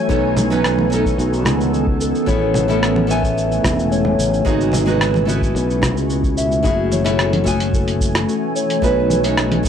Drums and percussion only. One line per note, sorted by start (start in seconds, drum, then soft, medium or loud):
0.09 kick loud
0.09 shaker soft
0.36 high conga medium
0.36 low conga medium
0.36 shaker medium
0.51 shaker soft
0.64 cross-stick medium
0.64 shaker soft
0.79 high conga medium
0.92 shaker medium
1.05 kick medium
1.05 shaker soft
1.19 shaker soft
1.33 shaker soft
1.45 cross-stick medium
1.45 low conga medium
1.45 shaker medium
1.61 shaker soft
1.74 shaker soft
1.87 kick medium
2.01 shaker medium
2.15 shaker soft
2.27 kick loud
2.27 shaker soft
2.54 high conga medium
2.54 low conga medium
2.54 shaker medium
2.70 shaker soft
2.83 cross-stick medium
2.83 shaker soft
2.96 high conga medium
3.10 shaker medium
3.23 kick medium
3.23 shaker soft
3.38 shaker soft
3.52 shaker soft
3.64 kick medium
3.64 cross-stick medium
3.64 low conga medium
3.64 shaker medium
3.79 shaker soft
3.92 shaker soft
4.05 low conga medium
4.19 shaker medium
4.34 shaker soft
4.45 kick loud
4.45 shaker soft
4.61 shaker soft
4.72 high conga medium
4.72 low conga medium
4.72 shaker medium
4.86 high conga medium
4.86 shaker soft
5.01 cross-stick medium
5.01 shaker soft
5.14 high conga medium
5.14 shaker soft
5.29 shaker medium
5.42 kick medium
5.42 shaker soft
5.56 shaker soft
5.70 shaker soft
5.82 kick medium
5.82 cross-stick medium
5.82 low conga medium
5.82 shaker medium
5.97 shaker soft
6.10 shaker soft
6.24 kick loud
6.24 shaker soft
6.37 shaker medium
6.52 shaker soft
6.64 kick loud
6.64 shaker soft
6.92 high conga medium
6.92 shaker medium
7.06 closed hi-hat medium
7.06 shaker soft
7.19 cross-stick medium
7.19 shaker soft
7.33 closed hi-hat soft
7.33 high conga medium
7.46 kick medium
7.46 shaker medium
7.60 closed hi-hat medium
7.60 shaker soft
7.73 kick loud
7.73 shaker soft
7.88 closed hi-hat soft
7.88 shaker soft
8.00 kick loud
8.00 shaker medium
8.15 cross-stick medium
8.15 closed hi-hat medium
8.15 shaker soft
8.29 shaker soft
8.56 shaker medium
8.70 closed hi-hat medium
8.70 shaker soft
8.82 kick loud
8.82 shaker soft
9.10 high conga medium
9.10 shaker medium
9.24 closed hi-hat medium
9.24 shaker soft
9.37 cross-stick medium
9.37 shaker soft
9.52 closed hi-hat soft
9.52 high conga medium
9.64 kick loud
9.64 shaker medium